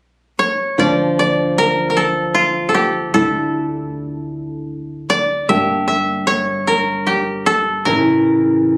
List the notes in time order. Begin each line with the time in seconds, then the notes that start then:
0.39 C#5
0.78 D2 F3 D4 F4 D5
1.19 D5
1.58 A#4
1.90 A#4
1.97 A4
2.34 F4
2.69 A4
2.74 G4
3.14 D2 A3 D4 E4 A4
5.10 D5
5.49 G1 A#3 D4 G4 E5
5.88 E5
6.27 C#5
6.67 A#4
7.07 G4
7.46 A4
7.85 A1 C#3 E3 E4 A#4